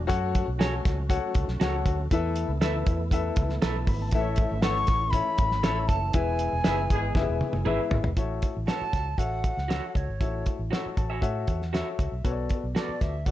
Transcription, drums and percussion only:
0.10 kick loud
0.10 closed hi-hat loud
0.35 kick medium
0.35 closed hi-hat medium
0.61 snare loud
0.61 closed hi-hat loud
0.85 kick medium
0.85 snare soft
0.85 closed hi-hat medium
1.10 kick medium
1.10 closed hi-hat medium
1.34 kick medium
1.34 closed hi-hat medium
1.48 snare soft
1.61 snare loud
1.61 closed hi-hat medium
1.86 kick medium
1.86 closed hi-hat medium
2.11 kick loud
2.11 closed hi-hat loud
2.36 closed hi-hat medium
2.62 snare loud
2.62 closed hi-hat loud
2.86 kick medium
2.86 closed hi-hat medium
3.11 kick medium
3.11 closed hi-hat loud
3.36 kick medium
3.36 closed hi-hat medium
3.49 snare soft
3.62 snare loud
3.62 closed hi-hat medium
3.87 kick medium
3.87 open hi-hat medium
4.11 kick loud
4.11 closed hi-hat loud
4.36 kick loud
4.36 closed hi-hat medium
4.62 snare loud
4.62 closed hi-hat loud
4.87 kick medium
4.87 snare soft
4.87 closed hi-hat medium
5.13 kick medium
5.13 closed hi-hat medium
5.38 kick medium
5.38 closed hi-hat medium
5.51 snare soft
5.64 snare loud
5.64 closed hi-hat medium
5.89 kick medium
5.89 closed hi-hat medium
6.13 kick loud
6.13 closed hi-hat loud
6.39 closed hi-hat medium
6.64 snare loud
6.64 closed hi-hat loud
6.90 kick medium
6.90 closed hi-hat medium
7.15 kick medium
7.15 snare medium
7.41 high tom medium
7.53 high tom medium
7.66 mid tom medium
7.91 floor tom loud
8.04 floor tom medium
8.17 kick medium
8.17 closed hi-hat medium
8.42 kick medium
8.42 closed hi-hat medium
8.68 snare loud
8.68 closed hi-hat medium
8.93 kick medium
8.93 snare soft
8.93 closed hi-hat medium
9.18 kick medium
9.18 closed hi-hat medium
9.44 kick medium
9.44 closed hi-hat medium
9.58 snare soft
9.70 snare medium
9.70 closed hi-hat medium
9.95 kick medium
9.95 closed hi-hat medium
10.21 kick medium
10.21 closed hi-hat medium
10.46 kick medium
10.46 closed hi-hat medium
10.73 snare loud
10.73 closed hi-hat medium
10.97 kick medium
10.97 closed hi-hat medium
11.22 kick medium
11.22 closed hi-hat medium
11.47 kick medium
11.47 closed hi-hat medium
11.62 snare soft
11.74 snare medium
11.74 closed hi-hat medium
11.99 kick medium
11.99 closed hi-hat medium
12.25 kick medium
12.25 closed hi-hat medium
12.49 kick medium
12.49 closed hi-hat medium
12.76 snare loud
12.76 closed hi-hat medium
13.01 kick medium
13.01 snare soft
13.01 closed hi-hat medium
13.26 kick medium
13.26 closed hi-hat medium

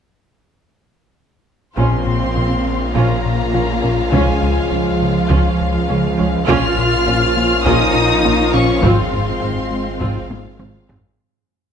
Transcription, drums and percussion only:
1.77 taiko medium
4.13 taiko medium
5.30 taiko medium
6.48 taiko medium
7.66 taiko medium
8.83 taiko medium
9.13 taiko low soft
9.42 taiko low soft
10.01 taiko medium
10.31 taiko high medium
10.60 taiko mid medium
10.89 taiko low medium

